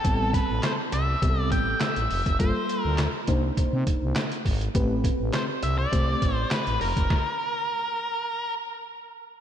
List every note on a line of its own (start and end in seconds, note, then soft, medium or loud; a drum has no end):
0.00 0.30 A4 medium
0.04 0.40 A1 medium
0.04 0.75 G3 medium
0.04 0.75 B3 medium
0.04 0.75 C4 medium
0.04 0.75 A4 medium
0.04 kick loud
0.04 closed hi-hat medium
0.34 0.63 B4 medium
0.34 kick medium
0.34 closed hi-hat medium
0.50 0.60 A1 medium
0.63 0.72 C5 loud
0.63 snare loud
0.63 clap medium
0.63 closed hi-hat medium
0.92 1.16 C2 medium
0.92 1.40 E5 loud
0.92 closed hi-hat medium
1.22 1.53 C2 loud
1.22 1.93 G3 medium
1.22 1.93 B3 medium
1.22 1.93 C4 medium
1.22 1.29 G4 medium
1.22 kick loud
1.22 closed hi-hat medium
1.29 1.96 A4 medium
1.40 1.51 D5 loud
1.52 1.75 A1 medium
1.52 1.81 G5 medium
1.52 kick medium
1.52 closed hi-hat medium
1.81 2.36 E5 medium
1.81 snare loud
1.81 clap medium
1.81 closed hi-hat medium
1.96 2.07 A1 medium
1.96 closed hi-hat medium
2.10 2.23 F1 medium
2.10 open hi-hat medium
2.26 2.37 F#1 loud
2.26 kick medium
2.26 closed hi-hat medium
2.40 2.52 G1 loud
2.40 3.10 G3 medium
2.40 3.10 A#3 medium
2.40 3.10 F4 medium
2.40 3.11 A4 medium
2.40 2.82 C5 medium
2.40 kick loud
2.40 closed hi-hat medium
2.69 closed hi-hat medium
2.82 3.08 D2 loud
2.82 2.95 A#4 medium
2.98 snare loud
2.98 clap medium
2.98 closed hi-hat medium
3.27 3.51 C2 loud
3.27 4.22 A#3 medium
3.27 4.22 D4 medium
3.27 4.23 D#4 medium
3.27 4.23 C5 loud
3.27 kick medium
3.27 closed hi-hat medium
3.57 3.64 C3 soft
3.57 kick loud
3.57 closed hi-hat medium
3.73 3.84 C3 loud
3.87 kick medium
3.87 closed hi-hat medium
4.02 4.13 C2 medium
4.16 snare loud
4.16 clap medium
4.16 closed hi-hat medium
4.32 closed hi-hat medium
4.45 4.69 G#1 medium
4.45 kick medium
4.45 open hi-hat medium
4.61 closed hi-hat soft
4.75 5.10 A1 medium
4.75 5.45 A3 medium
4.75 5.46 C4 medium
4.75 5.46 G4 medium
4.75 5.46 B4 loud
4.75 kick loud
4.75 closed hi-hat medium
5.04 kick medium
5.04 closed hi-hat medium
5.20 5.31 A1 medium
5.33 5.42 C5 medium
5.33 snare loud
5.33 clap medium
5.33 closed hi-hat medium
5.63 5.86 C2 medium
5.63 5.78 E5 loud
5.63 closed hi-hat medium
5.79 6.34 D5 loud
5.92 6.16 C2 medium
5.92 6.63 A3 medium
5.92 6.63 C4 medium
5.92 6.63 G4 medium
5.92 6.63 C5 medium
5.92 kick loud
5.92 closed hi-hat medium
6.22 6.45 A1 medium
6.22 kick medium
6.22 closed hi-hat medium
6.34 6.54 C5 loud
6.51 6.81 B4 medium
6.51 snare loud
6.51 clap medium
6.51 closed hi-hat medium
6.67 6.78 A1 medium
6.67 closed hi-hat soft
6.81 6.93 F1 medium
6.81 8.54 A#4 medium
6.81 open hi-hat medium
6.97 7.07 F#1 medium
6.97 kick loud
6.97 closed hi-hat medium
7.10 kick loud
7.10 snare loud